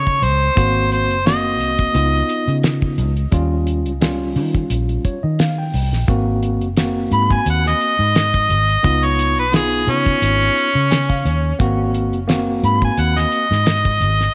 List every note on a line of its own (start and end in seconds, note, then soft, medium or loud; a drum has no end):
0.00 0.24 C#3 medium
0.00 0.25 C#5 medium
0.07 kick medium
0.22 0.48 C#2 medium
0.22 0.92 C5 medium
0.22 closed hi-hat medium
0.56 1.10 G#1 medium
0.56 1.15 A#3 medium
0.56 1.15 C4 medium
0.56 1.16 F#4 medium
0.56 kick loud
0.56 closed hi-hat medium
0.92 1.24 C5 medium
0.92 closed hi-hat medium
1.10 1.60 F#1 medium
1.10 closed hi-hat soft
1.25 1.95 A#3 medium
1.25 1.95 C4 medium
1.25 1.96 F#4 medium
1.25 2.60 D#5 medium
1.25 snare loud
1.25 closed hi-hat medium
1.60 1.86 C2 loud
1.60 closed hi-hat medium
1.79 kick medium
1.79 closed hi-hat soft
1.93 2.21 C#2 medium
1.93 3.10 B3 medium
1.93 3.10 D#4 medium
1.93 3.11 F4 medium
1.93 closed hi-hat medium
2.29 closed hi-hat medium
2.48 3.00 C#3 medium
2.48 closed hi-hat soft
2.63 snare loud
2.63 closed hi-hat medium
2.82 kick medium
2.98 3.24 C#2 loud
2.98 closed hi-hat medium
3.17 closed hi-hat soft
3.32 3.86 D#2 medium
3.32 3.90 G3 medium
3.32 3.91 C#4 medium
3.32 3.91 F4 loud
3.32 kick loud
3.32 closed hi-hat medium
3.67 closed hi-hat medium
3.86 4.37 C#2 medium
3.86 closed hi-hat soft
4.01 5.17 G3 medium
4.01 5.17 C#4 medium
4.01 5.18 F4 medium
4.01 snare loud
4.01 closed hi-hat medium
4.36 4.62 D#3 medium
4.36 open hi-hat medium
4.55 kick medium
4.55 closed hi-hat soft
4.70 4.96 A#1 medium
4.70 closed hi-hat medium
4.89 closed hi-hat soft
5.05 5.22 C#5 medium
5.05 kick medium
5.05 closed hi-hat medium
5.23 5.73 D#3 medium
5.23 5.38 D#5 medium
5.39 5.57 F5 medium
5.39 snare loud
5.39 closed hi-hat medium
5.58 6.05 G5 medium
5.74 5.91 C2 medium
5.74 open hi-hat medium
5.92 6.07 A#1 medium
5.92 snare soft
6.08 6.62 G#1 medium
6.08 6.66 A#3 medium
6.08 6.67 C4 medium
6.08 6.67 F#4 medium
6.08 kick loud
6.08 closed hi-hat medium
6.43 closed hi-hat medium
6.61 7.13 F#1 medium
6.61 closed hi-hat soft
6.77 7.93 A#3 medium
6.77 7.93 C4 medium
6.77 7.93 F#4 medium
6.77 snare loud
6.77 closed hi-hat medium
7.12 7.38 G#2 medium
7.12 7.35 B5 loud
7.12 closed hi-hat medium
7.30 7.47 G#5 medium
7.30 kick medium
7.30 closed hi-hat soft
7.46 7.72 D#2 medium
7.46 7.66 F#5 medium
7.46 closed hi-hat medium
7.65 9.07 D#5 loud
7.65 snare soft
7.65 closed hi-hat soft
7.81 closed hi-hat soft
7.99 8.51 G#2 medium
8.15 snare loud
8.15 closed hi-hat medium
8.34 kick medium
8.34 closed hi-hat soft
8.49 8.76 G#1 loud
8.49 closed hi-hat medium
8.69 closed hi-hat soft
8.83 9.38 C#2 medium
8.83 9.42 B3 medium
8.83 9.42 D#4 medium
8.83 9.43 F4 medium
8.83 kick loud
8.83 closed hi-hat medium
9.03 9.37 C#5 medium
9.03 closed hi-hat soft
9.19 closed hi-hat medium
9.38 9.89 B1 medium
9.38 9.53 B4 medium
9.38 closed hi-hat soft
9.52 10.68 B3 medium
9.52 10.69 D#4 medium
9.52 10.69 F4 medium
9.52 9.91 G#4 medium
9.52 snare loud
9.52 closed hi-hat medium
9.87 10.14 C#3 loud
9.87 11.57 C#4 loud
9.87 closed hi-hat medium
10.06 kick medium
10.06 closed hi-hat soft
10.22 10.48 G#1 loud
10.22 closed hi-hat medium
10.41 closed hi-hat soft
10.57 closed hi-hat medium
10.75 11.27 C#3 medium
10.91 11.08 G#5 medium
10.91 snare loud
10.91 closed hi-hat medium
11.09 11.24 F5 medium
11.09 kick medium
11.09 closed hi-hat soft
11.25 11.51 D#2 loud
11.25 11.58 C#5 medium
11.25 closed hi-hat medium
11.59 12.12 G#1 medium
11.59 12.18 A#3 medium
11.59 12.18 C4 medium
11.59 12.19 F#4 loud
11.59 kick loud
11.59 closed hi-hat medium
11.94 closed hi-hat medium
12.12 12.65 F#1 medium
12.12 closed hi-hat soft
12.28 13.44 A#3 loud
12.28 13.44 C4 medium
12.28 13.45 F#4 medium
12.28 snare loud
12.28 closed hi-hat medium
12.63 12.89 G#2 loud
12.63 12.82 B5 loud
12.63 closed hi-hat medium
12.82 13.02 G#5 medium
12.82 kick medium
12.82 closed hi-hat soft
12.98 13.24 D#2 medium
12.98 13.20 F#5 medium
12.98 closed hi-hat medium
13.16 14.34 D#5 loud
13.16 snare soft
13.16 closed hi-hat soft
13.32 closed hi-hat medium
13.51 14.02 G#2 medium
13.51 snare soft
13.66 snare loud
13.66 closed hi-hat medium
13.85 kick medium
13.85 closed hi-hat soft
14.00 14.27 G#1 loud
14.00 closed hi-hat medium
14.20 snare soft
14.20 closed hi-hat soft